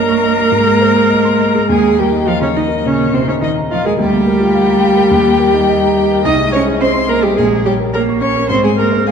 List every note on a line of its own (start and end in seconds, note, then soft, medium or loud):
0.00 0.49 G2 medium
0.00 0.55 A#3 soft
0.00 1.65 A#3 medium
0.00 0.38 A#4 medium
0.00 1.65 A#4 loud
0.00 0.55 C#5 medium
0.00 0.18 D#5 medium
0.00 1.69 A#5 medium
0.09 0.32 C#6 medium
0.23 0.46 D#5 soft
0.38 0.52 A#4 medium
0.51 1.65 G#2 medium
0.66 0.90 G#3 soft
0.81 1.05 C5 medium
0.95 1.19 G#4 medium
1.10 1.34 D#5 medium
1.25 1.49 C6 medium
1.39 1.63 D#5 medium
1.55 1.69 G#4 medium
1.69 2.80 D#2 medium
1.69 1.98 G#3 medium
1.69 2.01 G#4 medium
1.69 2.00 G#5 medium
1.83 2.07 A#3 soft
1.99 2.07 G3 medium
1.99 2.30 G4 medium
1.99 2.21 A#4 medium
1.99 2.29 G5 medium
2.12 2.35 D#4 medium
2.27 2.33 F3 medium
2.27 2.42 F4 medium
2.27 2.49 D#5 medium
2.27 2.41 F5 medium
2.40 2.47 C#3 medium
2.40 2.48 C#4 medium
2.40 2.58 C#5 medium
2.40 2.63 A#5 medium
2.55 2.65 D#3 medium
2.55 2.64 D#4 medium
2.55 2.78 D#5 medium
2.55 2.88 D#5 medium
2.68 2.92 A#4 medium
2.84 3.07 A#2 medium
2.84 3.12 C#3 medium
2.84 3.13 C#4 medium
2.84 3.16 C#5 medium
2.98 3.21 A#3 soft
3.13 3.29 C3 medium
3.13 3.19 C4 medium
3.13 3.36 A#4 medium
3.13 3.28 C5 medium
3.27 3.40 C#3 medium
3.27 3.34 C#4 medium
3.27 3.50 D#4 medium
3.27 3.35 C#5 medium
3.41 3.49 D#3 medium
3.41 3.49 D#4 medium
3.41 3.65 D#5 medium
3.41 3.51 D#5 medium
3.56 3.79 A#5 medium
3.71 3.77 F3 medium
3.71 3.87 F4 medium
3.71 3.93 D#5 medium
3.71 3.85 F5 medium
3.85 3.99 G#3 medium
3.85 3.98 G#4 medium
3.85 3.99 A#4 medium
3.85 3.93 G#5 medium
3.99 5.09 D2 medium
3.99 6.21 G3 medium
3.99 6.21 G4 loud
3.99 6.27 G5 medium
4.13 4.36 A#3 medium
4.27 4.50 A#4 medium
4.40 4.63 F4 medium
4.54 4.78 F5 medium
4.69 4.92 A#5 medium
4.83 5.06 F5 medium
4.97 5.12 A#4 medium
5.11 6.21 D#2 medium
5.27 5.49 A#3 medium
5.39 5.63 A#4 medium
5.54 5.77 D#4 medium
5.69 5.92 D#5 medium
5.84 6.06 A#5 medium
5.97 6.19 D#5 soft
6.11 6.25 A#4 medium
6.25 7.33 C2 medium
6.25 6.34 D#4 medium
6.25 6.52 D#5 medium
6.25 6.53 D#6 medium
6.39 6.61 G#3 medium
6.52 6.82 C#4 medium
6.52 6.75 C5 medium
6.52 6.60 C#5 medium
6.52 6.63 C#6 medium
6.66 6.89 G#4 medium
6.80 7.11 C4 medium
6.80 6.88 C5 medium
6.80 7.03 D#5 medium
6.80 7.11 C6 medium
6.94 7.17 C6 medium
7.08 7.26 A#3 medium
7.08 7.24 A#4 medium
7.08 7.31 D#5 medium
7.08 7.26 A#5 medium
7.23 7.37 G3 medium
7.23 7.38 G4 medium
7.23 7.37 G#4 medium
7.23 7.37 G5 medium
7.37 8.48 A#1 medium
7.37 7.64 G#3 medium
7.37 7.65 G#4 medium
7.37 7.45 G#5 medium
7.52 7.74 A#3 medium
7.65 7.73 G3 medium
7.65 7.73 G4 medium
7.65 7.88 C#5 medium
7.65 7.74 G5 medium
7.80 8.02 A#4 medium
7.93 8.22 A#3 medium
7.93 8.02 A#4 medium
7.93 8.16 C#5 medium
7.93 8.01 A#5 medium
8.09 8.31 C#6 medium
8.21 8.50 C#4 medium
8.21 8.44 C#5 medium
8.21 8.49 C#5 medium
8.21 8.49 C#6 medium
8.36 8.50 A#4 medium
8.49 9.11 G#2 medium
8.49 8.63 C4 medium
8.49 8.63 C5 medium
8.49 8.55 C6 medium
8.64 8.70 G#3 medium
8.64 8.87 C4 soft
8.64 8.70 G#4 medium
8.64 8.78 G#5 medium
8.77 9.07 A#3 medium
8.77 9.02 G#4 soft
8.77 9.06 A#4 medium
8.77 8.87 A#5 medium
8.92 9.11 C5 medium
9.07 9.11 G#3 medium
9.07 9.11 G#4 medium
9.07 9.11 F5 medium
9.07 9.11 G#5 medium